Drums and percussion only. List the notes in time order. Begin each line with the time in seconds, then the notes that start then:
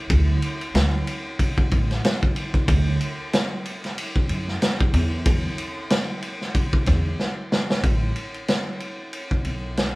0.10 kick, ride
0.42 ride
0.61 ride
0.75 snare, hi-hat pedal, ride
1.07 ride
1.39 kick, ride
1.58 kick
1.71 kick, ride
1.91 snare, ride
2.04 snare, hi-hat pedal, ride
2.23 kick
2.36 ride
2.54 kick, ride
2.68 kick, ride
3.01 ride
3.33 snare, hi-hat pedal, ride
3.65 ride
3.84 snare, ride
3.98 ride
4.16 kick
4.29 ride
4.48 snare
4.62 snare, hi-hat pedal, ride
4.81 kick
4.94 ride
5.26 kick, ride
5.58 ride
5.90 snare, hi-hat pedal, ride
6.22 ride
6.41 snare
6.55 kick, ride
6.73 kick
6.86 kick, snare, ride
7.20 snare
7.52 snare
7.70 snare
7.83 kick, ride
8.16 ride
8.34 ride
8.48 snare, hi-hat pedal, ride
8.80 ride
9.13 ride
9.31 kick
9.45 ride
9.77 snare, hi-hat pedal, ride